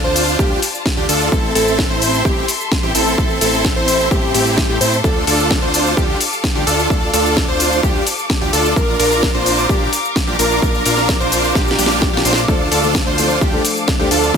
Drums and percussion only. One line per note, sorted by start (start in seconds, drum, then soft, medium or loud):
0.16 open hi-hat loud
0.16 shaker medium
0.28 shaker soft
0.39 kick loud
0.39 shaker soft
0.62 open hi-hat loud
0.62 shaker medium
0.75 shaker soft
0.86 kick loud
0.86 snare loud
0.86 shaker soft
1.09 open hi-hat loud
1.09 shaker medium
1.21 shaker soft
1.32 kick loud
1.32 shaker soft
1.55 open hi-hat loud
1.55 shaker medium
1.68 shaker soft
1.79 kick loud
1.79 snare loud
1.79 shaker soft
2.02 open hi-hat loud
2.02 shaker medium
2.14 shaker soft
2.25 kick loud
2.25 shaker soft
2.48 open hi-hat loud
2.48 shaker medium
2.61 shaker soft
2.72 kick loud
2.72 snare loud
2.72 shaker soft
2.95 open hi-hat loud
2.95 shaker medium
3.07 shaker soft
3.18 kick loud
3.18 shaker soft
3.30 shaker soft
3.41 open hi-hat loud
3.41 shaker medium
3.54 shaker soft
3.65 kick loud
3.65 snare loud
3.65 shaker soft
3.88 open hi-hat loud
3.88 shaker medium
4.00 shaker soft
4.11 kick loud
4.11 shaker soft
4.34 open hi-hat loud
4.34 shaker medium
4.47 shaker soft
4.58 kick loud
4.58 snare loud
4.58 shaker soft
4.81 open hi-hat loud
4.81 shaker medium
4.93 shaker soft
5.04 kick loud
5.04 shaker soft
5.27 open hi-hat loud
5.27 shaker medium
5.40 shaker soft
5.51 kick loud
5.51 snare loud
5.51 shaker soft
5.74 open hi-hat loud
5.74 shaker medium
5.86 shaker soft
5.97 kick loud
5.97 shaker soft
6.21 open hi-hat loud
6.21 shaker medium
6.33 shaker soft
6.44 kick loud
6.44 snare loud
6.44 shaker soft
6.67 open hi-hat loud
6.67 shaker medium
6.79 shaker soft
6.90 kick loud
6.90 shaker soft
7.14 open hi-hat loud
7.14 shaker medium
7.26 shaker soft
7.37 kick loud
7.37 snare loud
7.37 shaker soft
7.60 open hi-hat loud
7.60 shaker medium
7.72 shaker soft
7.83 kick loud
7.83 shaker soft
8.07 open hi-hat loud
8.07 shaker medium
8.19 shaker soft
8.30 kick loud
8.30 snare loud
8.30 shaker soft
8.53 open hi-hat loud
8.53 shaker medium
8.65 shaker soft
8.76 kick loud
8.76 shaker soft
9.00 open hi-hat loud
9.00 shaker medium
9.12 shaker soft
9.23 kick loud
9.23 snare loud
9.23 shaker soft
9.46 open hi-hat loud
9.46 shaker medium
9.58 shaker soft
9.69 kick loud
9.69 shaker soft
9.93 open hi-hat loud
9.93 shaker medium
10.05 shaker soft
10.16 kick loud
10.16 snare loud
10.16 shaker soft
10.39 open hi-hat loud
10.39 shaker medium
10.51 shaker soft
10.62 kick loud
10.62 shaker soft
10.75 shaker soft
10.85 open hi-hat loud
10.85 shaker medium
10.97 snare soft
10.97 shaker soft
11.09 kick loud
11.09 snare loud
11.09 shaker soft
11.21 shaker soft
11.32 open hi-hat loud
11.32 shaker medium
11.44 shaker soft
11.55 kick loud
11.55 snare medium
11.55 shaker soft
11.67 snare medium
11.67 shaker soft
11.79 open hi-hat loud
11.79 shaker medium
11.86 snare medium
11.91 shaker soft
12.02 kick loud
12.02 snare medium
12.02 shaker soft
12.17 snare medium
12.25 open hi-hat loud
12.25 shaker medium
12.33 snare loud
12.37 shaker soft
12.48 kick loud
12.48 shaker soft
12.72 open hi-hat loud
12.72 shaker medium
12.84 shaker soft
12.95 kick loud
12.95 snare loud
12.95 shaker soft
13.18 open hi-hat loud
13.18 shaker medium
13.30 shaker soft
13.41 kick loud
13.41 shaker soft
13.65 open hi-hat loud
13.65 shaker medium
13.77 shaker soft
13.88 kick loud
13.88 snare loud
13.88 shaker soft
14.11 open hi-hat loud
14.11 shaker medium
14.23 shaker soft